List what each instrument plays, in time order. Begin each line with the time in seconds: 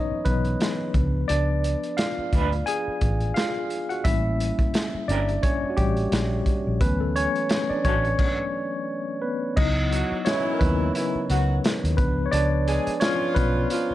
Already playing: tine electric piano E3 F#3 B3 C#4 D#4 B4 C#5 D#5
0.11 muted fingered electric bass stroke
0.25 fingered electric bass B1, tine electric piano E3 F#3 B3 D#4 B4, kick, closed hi-hat
0.45 closed hi-hat
0.60 snare, closed hi-hat
0.94 fingered electric bass C#2, tine electric piano F3 B3 D4, kick, closed hi-hat
1.28 fingered electric bass C#2, tine electric piano D4 D5, closed hi-hat
1.64 closed hi-hat
1.83 closed hi-hat
1.97 tine electric piano F4 F5, snare, closed hi-hat
2.18 muted fingered electric bass stroke
2.33 fingered electric bass D2, clean electric guitar D4 F4 B4, kick, closed hi-hat
2.52 closed hi-hat
2.66 tine electric piano G#4 G#5, closed hi-hat
2.88 muted fingered electric bass stroke
3.01 fingered electric bass A1, kick, closed hi-hat
3.20 closed hi-hat
3.34 tine electric piano F4 F5, snare, closed hi-hat
3.70 closed hi-hat
3.89 tine electric piano F#4 F#5, closed hi-hat
4.04 fingered electric bass A1, tine electric piano G3 A#3 C#4 E4 E5, kick, closed hi-hat
4.40 closed hi-hat
4.59 kick, closed hi-hat
4.74 snare, closed hi-hat
4.94 muted fingered electric bass stroke
5.08 fingered electric bass G1, clean electric guitar C#4 G4 A#4, tine electric piano D4 D5, closed hi-hat
5.29 closed hi-hat
5.43 tine electric piano C#4 C#5, kick, closed hi-hat
5.63 muted fingered electric bass stroke
5.70 tine electric piano F#4
5.77 fingered electric bass A1, tine electric piano G3 G4, kick, closed hi-hat
5.97 closed hi-hat
6.12 fingered electric bass A#1, snare, closed hi-hat
6.46 kick, closed hi-hat
6.67 fingered electric bass A#1
6.81 fingered electric bass D2, tine electric piano E3 F#3 B3 C#4 B4, kick, closed hi-hat
7.01 tine electric piano A3 A4
7.16 tine electric piano C#4 C#5, closed hi-hat
7.36 closed hi-hat
7.49 snare, closed hi-hat
7.70 tine electric piano D4 D5, muted fingered electric bass stroke
7.85 fingered electric bass A1, clean electric guitar C#4 F#4 A4, tine electric piano C#4 C#5, kick, closed hi-hat
8.04 closed hi-hat
8.19 kick, crash
9.22 tine electric piano B3 B4
9.57 fingered electric bass C#2, tine electric piano F#3 B3 D#4 E4 D#5, kick, crash
9.91 horn section F#3 F#4, closed hi-hat
10.12 muted fingered electric bass stroke
10.25 horn section E3 F#3 E4, tine electric piano C#4 C#5, snare, closed hi-hat
10.53 tine electric piano A#4
10.59 fingered electric bass D#2, tine electric piano C#3 F#3 B3 D#4 B4, kick, closed hi-hat
10.95 horn section E3 E4, closed hi-hat
11.15 muted fingered electric bass stroke
11.29 fingered electric bass C#2, horn section F#3 F#4, closed hi-hat
11.64 snare, closed hi-hat
11.84 fingered electric bass D#2, closed hi-hat
11.97 fingered electric bass C#2, tine electric piano F3 B3 D4 B4, kick, closed hi-hat
12.26 tine electric piano C#5
12.31 fingered electric bass C#2, tine electric piano D4 D5, closed hi-hat
12.67 horn section G#3 G#4, closed hi-hat
12.87 muted fingered electric bass stroke, closed hi-hat
13.00 horn section F3 F4, tine electric piano C#4 C#5, snare, closed hi-hat
13.34 fingered electric bass B1, tine electric piano B3 B4, kick, closed hi-hat
13.70 horn section F3 F4, closed hi-hat
13.91 muted fingered electric bass stroke